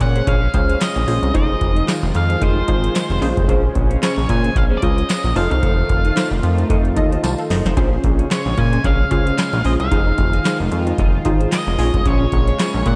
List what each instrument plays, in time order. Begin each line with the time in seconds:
Already playing: analog synth pad C#3 G#3 C#4
0.00 analog synth bass A#2, lead electric guitar F#5, muted clean electric guitar stroke, kick, closed hi-hat
0.15 clean electric guitar C#4 G#4 C5, closed hi-hat
0.27 analog synth bass A#1, clean electric guitar C#4 G#4 C#5, lead electric guitar F5, kick, closed hi-hat
0.42 muted clean electric guitar stroke
0.54 analog synth bass C#2, analog polysynth C#4 F4 G#4 C5, muted clean electric guitar stroke, kick, closed hi-hat
0.69 clean electric guitar C#4 G#4 C5, closed hi-hat
0.81 lead electric guitar D#5, muted clean electric guitar stroke, snare, clap, closed hi-hat, tambourine
0.95 analog synth bass A#1, muted clean electric guitar stroke, closed hi-hat
1.07 analog synth bass A#1, analog polysynth C#4 F4 G#4 C5, open hi-hat
1.22 analog synth bass C2, muted clean electric guitar stroke, closed hi-hat
1.34 analog synth bass F1, analog synth pad D#3 F4, clean electric guitar D#4 G#4 C5, analog polysynth D#4 F4 G#4 C5, lead electric guitar D#5, kick, closed hi-hat
1.49 muted clean electric guitar stroke
1.61 analog synth bass F1, muted clean electric guitar stroke, kick, closed hi-hat
1.76 clean electric guitar D#4 G#4 D#5, closed hi-hat
1.88 clean electric guitar D#4 G#4 C5, snare, clap, closed hi-hat, tambourine
2.02 analog synth bass F1, muted clean electric guitar stroke
2.14 analog synth bass F2, lead electric guitar F5, muted clean electric guitar stroke, closed hi-hat
2.29 clean electric guitar D#4 G#4 C5, closed hi-hat
2.41 analog synth bass F1, clean electric guitar D#4 G#4 D#5, lead electric guitar C5, kick, closed hi-hat
2.56 muted clean electric guitar stroke
2.68 analog synth bass G#1, analog polysynth D#4 F4 G#4 C5, muted clean electric guitar stroke, kick, closed hi-hat
2.83 clean electric guitar D#4 G#4 C5, closed hi-hat
2.95 muted clean electric guitar stroke, snare, clap, closed hi-hat, tambourine
3.10 analog synth bass F1, muted clean electric guitar stroke, closed hi-hat
3.21 analog synth bass A#1, analog synth pad C#3 C#4, analog polysynth C#4 F4 G#4 C5, open hi-hat
3.36 analog synth bass F1, muted clean electric guitar stroke, kick, closed hi-hat
3.48 analog synth bass A#1, clean electric guitar C#4 G#4 C5, kick, closed hi-hat
3.63 muted clean electric guitar stroke
3.75 analog synth bass A#1, muted clean electric guitar stroke, kick, closed hi-hat
3.90 clean electric guitar C#4 G#4 C#5, closed hi-hat
4.02 clean electric guitar C#4 G#4 C5, lead electric guitar C#5, snare, clap, closed hi-hat, tambourine
4.16 analog synth bass A#1, muted clean electric guitar stroke
4.28 analog synth bass A#2, lead electric guitar G#5, muted clean electric guitar stroke, kick, closed hi-hat
4.43 clean electric guitar C#4 G#4 C5, closed hi-hat
4.55 analog synth bass A#1, lead electric guitar F5, muted clean electric guitar stroke, kick, closed hi-hat
4.70 clean electric guitar C#4 G#4 C5
4.78 lead electric guitar D5
4.82 analog synth bass C#2, analog polysynth C#4 F4 G#4 C5, lead electric guitar D#5, muted clean electric guitar stroke, kick, closed hi-hat
4.97 muted clean electric guitar stroke, closed hi-hat
5.09 muted clean electric guitar stroke, snare, clap, closed hi-hat, tambourine
5.24 analog synth bass A#1, muted clean electric guitar stroke, closed hi-hat
5.36 analog synth bass F1, analog synth pad D#3 A3 F4, analog polysynth D#4 F4 A4 C5, lead electric guitar F5, open hi-hat
5.51 analog synth bass C2, lead electric guitar F5, muted clean electric guitar stroke, closed hi-hat
5.62 analog synth bass F1, clean electric guitar D#4 A4 C5, kick, closed hi-hat
5.77 muted clean electric guitar stroke
5.89 analog synth bass F1, muted clean electric guitar stroke, kick, closed hi-hat
6.04 clean electric guitar D#4 A4 D#5, closed hi-hat
6.16 clean electric guitar D#4 A4 C5, snare, clap, closed hi-hat, tambourine
6.31 analog synth bass F1, muted clean electric guitar stroke
6.43 analog synth bass F2, muted clean electric guitar stroke, closed hi-hat
6.58 clean electric guitar D#4 A4 C5, closed hi-hat
6.69 analog synth bass F2, clean electric guitar D#4 A4 D#5, kick, closed hi-hat
6.84 muted clean electric guitar stroke, closed hi-hat
6.96 analog synth bass D#2, analog polysynth D#4 F4 A4 D#5, muted clean electric guitar stroke, kick, closed hi-hat
7.11 clean electric guitar D#4 A4 C5, closed hi-hat
7.23 analog synth bass C2, analog polysynth C5 A5, muted clean electric guitar stroke, snare, closed hi-hat, tambourine
7.38 analog polysynth A4 F5, muted clean electric guitar stroke, closed hi-hat
7.50 analog synth bass F#1, clean electric guitar D#4 A4 C5, analog polysynth D#5, snare, open hi-hat
7.65 analog synth bass F1, analog polysynth D#4 C5, clean electric guitar D#4 A4 C5, snare, closed hi-hat
7.77 analog synth bass A#1, analog synth pad C#3 G#3 C#4, analog polysynth C#4 F4 G#4 C5, clean electric guitar C#4 G#4 C5, kick, closed hi-hat
7.92 muted clean electric guitar stroke
8.04 analog synth bass A#1, muted clean electric guitar stroke, kick, closed hi-hat
8.19 clean electric guitar C#4 G#4 C#5, closed hi-hat
8.30 clean electric guitar C#4 G#4 C5, lead electric guitar C#5, snare, clap, closed hi-hat, tambourine
8.45 analog synth bass A#1, muted clean electric guitar stroke
8.57 analog synth bass A#2, lead electric guitar G#5, muted clean electric guitar stroke, kick, closed hi-hat
8.72 clean electric guitar C#4 G#4 C5, closed hi-hat
8.84 analog synth bass A#1, clean electric guitar C#4 G#4 C#5, lead electric guitar F5, kick, closed hi-hat
8.99 muted clean electric guitar stroke
9.11 analog synth bass C#2, analog polysynth C#4 F4 G#4 C5, lead electric guitar F5, muted clean electric guitar stroke, kick, closed hi-hat
9.26 clean electric guitar C#4 G#4 C5, closed hi-hat
9.37 muted clean electric guitar stroke, snare, clap, closed hi-hat, tambourine
9.52 analog synth bass A#1, muted clean electric guitar stroke, closed hi-hat
9.64 analog synth bass A#1, analog polysynth C#4 F4 G#4 C5, lead electric guitar D#5, open hi-hat
9.79 analog synth bass C2, lead electric guitar F5, muted clean electric guitar stroke, closed hi-hat
9.91 analog synth bass F1, analog synth pad D#3 F4, analog polysynth D#4 F4 G#4 C5, clean electric guitar D#4 G#4 C5, kick, closed hi-hat
10.06 muted clean electric guitar stroke
10.18 analog synth bass F1, muted clean electric guitar stroke, kick, closed hi-hat
10.33 clean electric guitar D#4 G#4 D#5, closed hi-hat
10.45 clean electric guitar D#4 G#4 C5, snare, clap, closed hi-hat, tambourine
10.60 analog synth bass F1, muted clean electric guitar stroke
10.71 analog synth bass F2, muted clean electric guitar stroke, closed hi-hat
10.87 clean electric guitar D#4 G#4 C5, closed hi-hat
10.98 analog synth bass F1, clean electric guitar D#4 G#4 D#5, kick, closed hi-hat
11.13 muted clean electric guitar stroke
11.25 analog synth bass G#1, analog polysynth D#4 F4 G#4 C5, muted clean electric guitar stroke, kick, closed hi-hat
11.40 clean electric guitar D#4 G#4 C5, closed hi-hat
11.52 lead electric guitar D#5, muted clean electric guitar stroke, snare, clap, closed hi-hat, tambourine
11.67 analog synth bass F1, muted clean electric guitar stroke, closed hi-hat
11.79 analog synth bass A#1, analog synth pad C#3 G#3 C#4, analog polysynth C#4 F4 G#4 C#5, open hi-hat
11.94 analog synth bass F1, muted clean electric guitar stroke, kick, closed hi-hat
12.05 analog synth bass A#1, clean electric guitar C#4 G#4 C5, lead electric guitar C#5, kick, closed hi-hat
12.20 muted clean electric guitar stroke
12.32 analog synth bass A#1, muted clean electric guitar stroke, kick, closed hi-hat
12.48 clean electric guitar C#4 G#4 C#5, closed hi-hat
12.59 clean electric guitar C#4 G#4 C5, snare, clap, closed hi-hat, tambourine
12.74 analog synth bass A#1, muted clean electric guitar stroke
12.86 analog synth bass A#2, lead electric guitar F#5, muted clean electric guitar stroke, kick, closed hi-hat